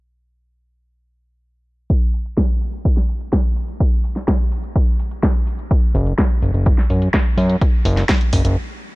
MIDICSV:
0, 0, Header, 1, 3, 480
1, 0, Start_track
1, 0, Tempo, 476190
1, 1915, Time_signature, 4, 2, 24, 8
1, 9024, End_track
2, 0, Start_track
2, 0, Title_t, "Analog synth bass"
2, 0, Program_c, 0, 38
2, 5993, Note_on_c, 0, 30, 100
2, 6183, Note_off_c, 0, 30, 0
2, 6474, Note_on_c, 0, 30, 78
2, 6569, Note_off_c, 0, 30, 0
2, 6594, Note_on_c, 0, 30, 94
2, 6783, Note_off_c, 0, 30, 0
2, 6954, Note_on_c, 0, 42, 90
2, 7143, Note_off_c, 0, 42, 0
2, 7433, Note_on_c, 0, 42, 93
2, 7623, Note_off_c, 0, 42, 0
2, 7914, Note_on_c, 0, 30, 101
2, 8103, Note_off_c, 0, 30, 0
2, 8396, Note_on_c, 0, 30, 78
2, 8490, Note_off_c, 0, 30, 0
2, 8514, Note_on_c, 0, 30, 93
2, 8635, Note_off_c, 0, 30, 0
2, 9024, End_track
3, 0, Start_track
3, 0, Title_t, "Drums"
3, 1914, Note_on_c, 9, 42, 77
3, 1915, Note_on_c, 9, 36, 110
3, 2015, Note_off_c, 9, 42, 0
3, 2016, Note_off_c, 9, 36, 0
3, 2155, Note_on_c, 9, 46, 100
3, 2255, Note_off_c, 9, 46, 0
3, 2274, Note_on_c, 9, 42, 50
3, 2375, Note_off_c, 9, 42, 0
3, 2394, Note_on_c, 9, 38, 117
3, 2394, Note_on_c, 9, 42, 78
3, 2395, Note_on_c, 9, 36, 107
3, 2495, Note_off_c, 9, 36, 0
3, 2495, Note_off_c, 9, 38, 0
3, 2495, Note_off_c, 9, 42, 0
3, 2515, Note_on_c, 9, 42, 36
3, 2615, Note_off_c, 9, 42, 0
3, 2634, Note_on_c, 9, 46, 88
3, 2735, Note_off_c, 9, 46, 0
3, 2754, Note_on_c, 9, 42, 51
3, 2855, Note_off_c, 9, 42, 0
3, 2874, Note_on_c, 9, 42, 76
3, 2875, Note_on_c, 9, 36, 110
3, 2975, Note_off_c, 9, 36, 0
3, 2975, Note_off_c, 9, 42, 0
3, 2993, Note_on_c, 9, 38, 34
3, 3094, Note_off_c, 9, 38, 0
3, 3113, Note_on_c, 9, 46, 94
3, 3214, Note_off_c, 9, 46, 0
3, 3233, Note_on_c, 9, 42, 49
3, 3334, Note_off_c, 9, 42, 0
3, 3353, Note_on_c, 9, 38, 113
3, 3353, Note_on_c, 9, 42, 75
3, 3354, Note_on_c, 9, 36, 108
3, 3454, Note_off_c, 9, 38, 0
3, 3454, Note_off_c, 9, 42, 0
3, 3455, Note_off_c, 9, 36, 0
3, 3593, Note_on_c, 9, 46, 87
3, 3694, Note_off_c, 9, 46, 0
3, 3713, Note_on_c, 9, 42, 50
3, 3814, Note_off_c, 9, 42, 0
3, 3833, Note_on_c, 9, 42, 76
3, 3834, Note_on_c, 9, 36, 112
3, 3934, Note_off_c, 9, 42, 0
3, 3935, Note_off_c, 9, 36, 0
3, 4073, Note_on_c, 9, 46, 101
3, 4174, Note_off_c, 9, 46, 0
3, 4193, Note_on_c, 9, 38, 37
3, 4193, Note_on_c, 9, 42, 50
3, 4294, Note_off_c, 9, 38, 0
3, 4294, Note_off_c, 9, 42, 0
3, 4313, Note_on_c, 9, 38, 116
3, 4313, Note_on_c, 9, 42, 74
3, 4314, Note_on_c, 9, 36, 118
3, 4414, Note_off_c, 9, 38, 0
3, 4414, Note_off_c, 9, 42, 0
3, 4415, Note_off_c, 9, 36, 0
3, 4432, Note_on_c, 9, 42, 36
3, 4533, Note_off_c, 9, 42, 0
3, 4553, Note_on_c, 9, 46, 89
3, 4654, Note_off_c, 9, 46, 0
3, 4673, Note_on_c, 9, 42, 50
3, 4774, Note_off_c, 9, 42, 0
3, 4793, Note_on_c, 9, 42, 76
3, 4795, Note_on_c, 9, 36, 111
3, 4894, Note_off_c, 9, 42, 0
3, 4895, Note_off_c, 9, 36, 0
3, 5034, Note_on_c, 9, 46, 100
3, 5135, Note_off_c, 9, 46, 0
3, 5154, Note_on_c, 9, 42, 49
3, 5255, Note_off_c, 9, 42, 0
3, 5274, Note_on_c, 9, 36, 110
3, 5274, Note_on_c, 9, 38, 115
3, 5274, Note_on_c, 9, 42, 74
3, 5375, Note_off_c, 9, 36, 0
3, 5375, Note_off_c, 9, 38, 0
3, 5375, Note_off_c, 9, 42, 0
3, 5394, Note_on_c, 9, 42, 35
3, 5495, Note_off_c, 9, 42, 0
3, 5514, Note_on_c, 9, 46, 88
3, 5615, Note_off_c, 9, 46, 0
3, 5634, Note_on_c, 9, 42, 50
3, 5735, Note_off_c, 9, 42, 0
3, 5754, Note_on_c, 9, 42, 73
3, 5755, Note_on_c, 9, 36, 118
3, 5855, Note_off_c, 9, 36, 0
3, 5855, Note_off_c, 9, 42, 0
3, 5994, Note_on_c, 9, 46, 106
3, 6095, Note_off_c, 9, 46, 0
3, 6115, Note_on_c, 9, 42, 49
3, 6215, Note_off_c, 9, 42, 0
3, 6234, Note_on_c, 9, 38, 113
3, 6234, Note_on_c, 9, 42, 71
3, 6235, Note_on_c, 9, 36, 115
3, 6335, Note_off_c, 9, 38, 0
3, 6335, Note_off_c, 9, 42, 0
3, 6336, Note_off_c, 9, 36, 0
3, 6354, Note_on_c, 9, 42, 34
3, 6455, Note_off_c, 9, 42, 0
3, 6475, Note_on_c, 9, 46, 94
3, 6575, Note_off_c, 9, 46, 0
3, 6595, Note_on_c, 9, 42, 48
3, 6696, Note_off_c, 9, 42, 0
3, 6715, Note_on_c, 9, 42, 75
3, 6716, Note_on_c, 9, 36, 119
3, 6816, Note_off_c, 9, 36, 0
3, 6816, Note_off_c, 9, 42, 0
3, 6835, Note_on_c, 9, 38, 34
3, 6936, Note_off_c, 9, 38, 0
3, 6955, Note_on_c, 9, 46, 104
3, 7056, Note_off_c, 9, 46, 0
3, 7076, Note_on_c, 9, 42, 48
3, 7177, Note_off_c, 9, 42, 0
3, 7196, Note_on_c, 9, 36, 117
3, 7196, Note_on_c, 9, 38, 116
3, 7196, Note_on_c, 9, 42, 74
3, 7296, Note_off_c, 9, 38, 0
3, 7297, Note_off_c, 9, 36, 0
3, 7297, Note_off_c, 9, 42, 0
3, 7435, Note_on_c, 9, 46, 93
3, 7536, Note_off_c, 9, 46, 0
3, 7555, Note_on_c, 9, 42, 48
3, 7656, Note_off_c, 9, 42, 0
3, 7675, Note_on_c, 9, 42, 71
3, 7676, Note_on_c, 9, 36, 118
3, 7776, Note_off_c, 9, 42, 0
3, 7777, Note_off_c, 9, 36, 0
3, 7915, Note_on_c, 9, 46, 107
3, 8016, Note_off_c, 9, 46, 0
3, 8036, Note_on_c, 9, 38, 36
3, 8036, Note_on_c, 9, 42, 49
3, 8137, Note_off_c, 9, 38, 0
3, 8137, Note_off_c, 9, 42, 0
3, 8155, Note_on_c, 9, 38, 111
3, 8155, Note_on_c, 9, 42, 72
3, 8156, Note_on_c, 9, 36, 120
3, 8256, Note_off_c, 9, 38, 0
3, 8256, Note_off_c, 9, 42, 0
3, 8257, Note_off_c, 9, 36, 0
3, 8275, Note_on_c, 9, 42, 33
3, 8376, Note_off_c, 9, 42, 0
3, 8395, Note_on_c, 9, 46, 93
3, 8396, Note_on_c, 9, 36, 61
3, 8495, Note_off_c, 9, 46, 0
3, 8497, Note_off_c, 9, 36, 0
3, 8515, Note_on_c, 9, 42, 49
3, 8616, Note_off_c, 9, 42, 0
3, 9024, End_track
0, 0, End_of_file